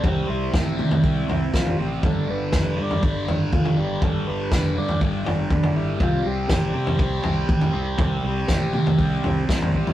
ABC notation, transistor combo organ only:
X:1
M:4/4
L:1/8
Q:1/4=121
K:C
V:1 name="Transistor combo organ"
G E4- E F G | A B2 d z2 F G | A B2 d z2 D E | F G3 G4- |
G6 z2 |]